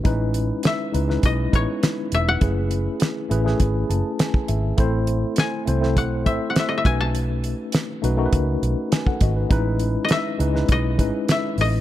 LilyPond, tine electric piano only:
\new Staff \with { instrumentName = "Tine electric piano" } { \time 4/4 \key a \lydian \tempo 4 = 102 << { r1 | r2 r8 a''8 gis''8 e''8 | r1 | r2. <b' gis''>16 <a' fis''>16 <fis' dis''>16 <dis' b'>16~ |
<dis' b'>16 r2. r8. | } \\ { <gis cis' dis' e' b'>4 r8 <gis cis' dis' e' b'>16 <gis cis' dis' e' b'>8 r16 <gis b cis' dis' e' b'>4 r8 | <a cis' e' gis' b'>4 r8 <a cis' e' gis' b'>16 <a cis' e' gis' b'>4~ <a cis' e' gis' b'>16 r4 | <a c' e' a' c''>4 r8 <a c' e' a' c''>16 <a c' e' a' c''>8 r16 <a c' e' a' c''>4 <a cis' dis' fis' b'>8~ | <a cis' dis' fis' b'>4 r8 <a cis' dis' fis' b'>16 <a cis' dis' fis' ais' b'>4~ <a cis' dis' fis' ais' b'>16 r4 |
<gis cis' dis' e' b'>4 r8 <gis cis' dis' e' b'>16 <gis cis' dis' e' b'>8 r16 <gis cis' dis' e' b'>4 r8 | } >> }